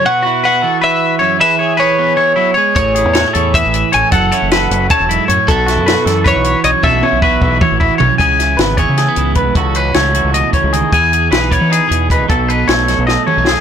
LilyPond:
<<
  \new Staff \with { instrumentName = "Clean electric guitar" } { \time 7/8 \key e \major \tempo 4 = 155 fis''4 fis''4 e''4. | e''4 cis''2 r8 | cis''2 e''4 gis''8 | fis''2 a''4 r8 |
a'2 cis''4 dis''8 | e''2. r8 | r2. r8 | r2. r8 |
r2. r8 | r2. r8 | }
  \new Staff \with { instrumentName = "Clean electric guitar" } { \time 7/8 \key e \major r8 fis'8 b'8 a'8 b'4 cis''8 | b'8 cis''8 b'4 cis''8 e'8 cis''8 | r8 gis'8 cis''8 a'8 b'4 cis''8 | a'8 cis''8 b'4 cis''8 e'8 cis''8 |
r8 fis'8 b'8 a'8 b'4 cis''8 | a'8 cis''8 b'4 cis''8 e'8 cis''8 | gis''4 b'8 cis''8 gis'4 b'8 | a'8 b'8 cis''4 dis''8 cis''8 gis'8 |
gis''4 b'8 cis''8 gis'4 b'8 | a'8 b'8 cis''4 dis''8 cis''8 gis'8 | }
  \new Staff \with { instrumentName = "Clean electric guitar" } { \time 7/8 \key e \major << { fis'8 e'8 fis'2~ fis'8 | gis'8 gis'8 gis'2~ gis'8 | gis'8 e'8 fis'16 gis'2~ gis'16 | a'8 e'8 a'2~ a'8 |
fis'8 e'8 fis'2~ fis'8 | fis'8 e'8 fis'2~ fis'8 | gis'8 e'8 b8 gis'8 a16 b16 e'8 b8 | fis'8 cis'8 a8 fis'2 |
gis'8 gis'8 cis'16 dis'16 b'8 dis'8 gis'8 dis'8 | a'8 dis'8 a8 a'8 a8 cis'16 dis'16 a8 | } \\ { b,4. e4. fis,8 | e4. b8 e8 fis8 gis8 | a,4. e4. a,8 | fis,4. fis8 fis,8 gis,8 a,8 |
b,4. e4. fis,8 | b,4. e4. fis,8 | cis4. e4 gis,4 | cis4. e8 b,8 cis8 dis8 |
e4. b4 b,4 | b,4. fis4 fis,4 | } >> }
  \new Staff \with { instrumentName = "Fingered electric bass" } { \clef bass \time 7/8 \key e \major r2. r8 | r2. r8 | a,,8. e,8 r16 e,8. a,,8 r16 a,,16 r16 | fis,,8 r16 fis,,8. fis,,8 r16 e,,8 r16 fis,16 r16 |
b,,8. fis,8 r16 fis,8. b,,8 r16 b,,16 r16 | b,,8 r16 b,,8. b,,8 r16 a,,8 r16 b,,16 r16 | cis,4 gis,,8. cis8 r16 cis,8. b,,16 | cis,4 cis,8. cis,8 r8 cis,8 r16 |
e,4 b,,8. e8 r16 e,8. c,16 | b,,4 b,,8. b,,8 r8 b,,8 r16 | }
  \new DrumStaff \with { instrumentName = "Drums" } \drummode { \time 7/8 r4 r4 r4. | r4 r4 r4. | <hh bd>8 hh8 <hh sn>8 hh8 <hh bd>8 hh8 hh8 | <hh bd>8 hh8 <hh sn>8 hh8 <hh bd>8 hh8 hh8 |
<hh bd>8 <hh sn>8 <hh sn>8 <hh sn>8 <hh bd>8 hh8 hh8 | <bd tommh>8 tommh8 bd8 bd8 <bd toml>8 bd8 tomfh8 | <hh bd>8 <hh sn>8 <hh sn>8 <hh bd>8 <hh sn>8 hh8 <hh bd>8 | <hh bd>8 hh8 <hh sn>8 hh8 hh8 <hh bd>8 hh8 |
<hh bd>8 hh8 <hh sn>8 <hh bd>8 hh8 hh8 <hh bd>8 | <hh bd>8 hh8 <hh sn>8 <hh sn>8 sn8 toml8 sn8 | }
>>